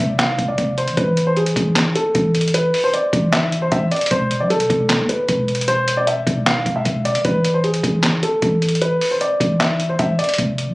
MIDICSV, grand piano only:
0, 0, Header, 1, 2, 480
1, 0, Start_track
1, 0, Key_signature, 0, "minor"
1, 0, Tempo, 392157
1, 1191, Time_signature, 4, 2, 24, 8
1, 13147, End_track
2, 0, Start_track
2, 0, Title_t, "Grand piano"
2, 0, Program_c, 0, 0
2, 0, Note_on_c, 0, 76, 83
2, 203, Note_off_c, 0, 76, 0
2, 230, Note_on_c, 0, 77, 82
2, 569, Note_off_c, 0, 77, 0
2, 591, Note_on_c, 0, 74, 73
2, 929, Note_off_c, 0, 74, 0
2, 951, Note_on_c, 0, 72, 79
2, 1142, Note_off_c, 0, 72, 0
2, 1191, Note_on_c, 0, 71, 92
2, 1530, Note_off_c, 0, 71, 0
2, 1551, Note_on_c, 0, 72, 85
2, 1647, Note_off_c, 0, 72, 0
2, 1672, Note_on_c, 0, 68, 74
2, 2348, Note_off_c, 0, 68, 0
2, 2392, Note_on_c, 0, 69, 79
2, 3068, Note_off_c, 0, 69, 0
2, 3111, Note_on_c, 0, 71, 92
2, 3449, Note_off_c, 0, 71, 0
2, 3472, Note_on_c, 0, 72, 86
2, 3567, Note_off_c, 0, 72, 0
2, 3593, Note_on_c, 0, 74, 81
2, 4043, Note_off_c, 0, 74, 0
2, 4071, Note_on_c, 0, 76, 94
2, 4409, Note_off_c, 0, 76, 0
2, 4431, Note_on_c, 0, 72, 86
2, 4527, Note_off_c, 0, 72, 0
2, 4551, Note_on_c, 0, 76, 88
2, 4742, Note_off_c, 0, 76, 0
2, 4792, Note_on_c, 0, 74, 85
2, 4983, Note_off_c, 0, 74, 0
2, 5032, Note_on_c, 0, 72, 94
2, 5370, Note_off_c, 0, 72, 0
2, 5390, Note_on_c, 0, 74, 79
2, 5486, Note_off_c, 0, 74, 0
2, 5511, Note_on_c, 0, 69, 91
2, 6188, Note_off_c, 0, 69, 0
2, 6231, Note_on_c, 0, 71, 68
2, 6908, Note_off_c, 0, 71, 0
2, 6950, Note_on_c, 0, 72, 101
2, 7289, Note_off_c, 0, 72, 0
2, 7310, Note_on_c, 0, 74, 85
2, 7406, Note_off_c, 0, 74, 0
2, 7432, Note_on_c, 0, 76, 77
2, 7883, Note_off_c, 0, 76, 0
2, 7911, Note_on_c, 0, 77, 91
2, 8249, Note_off_c, 0, 77, 0
2, 8271, Note_on_c, 0, 76, 74
2, 8610, Note_off_c, 0, 76, 0
2, 8630, Note_on_c, 0, 74, 82
2, 8821, Note_off_c, 0, 74, 0
2, 8870, Note_on_c, 0, 71, 106
2, 9209, Note_off_c, 0, 71, 0
2, 9231, Note_on_c, 0, 72, 78
2, 9327, Note_off_c, 0, 72, 0
2, 9349, Note_on_c, 0, 68, 78
2, 10027, Note_off_c, 0, 68, 0
2, 10073, Note_on_c, 0, 69, 76
2, 10749, Note_off_c, 0, 69, 0
2, 10790, Note_on_c, 0, 71, 97
2, 11129, Note_off_c, 0, 71, 0
2, 11152, Note_on_c, 0, 72, 78
2, 11247, Note_off_c, 0, 72, 0
2, 11272, Note_on_c, 0, 74, 84
2, 11723, Note_off_c, 0, 74, 0
2, 11750, Note_on_c, 0, 76, 91
2, 12089, Note_off_c, 0, 76, 0
2, 12110, Note_on_c, 0, 72, 78
2, 12206, Note_off_c, 0, 72, 0
2, 12230, Note_on_c, 0, 76, 82
2, 12422, Note_off_c, 0, 76, 0
2, 12469, Note_on_c, 0, 74, 84
2, 12661, Note_off_c, 0, 74, 0
2, 13147, End_track
0, 0, End_of_file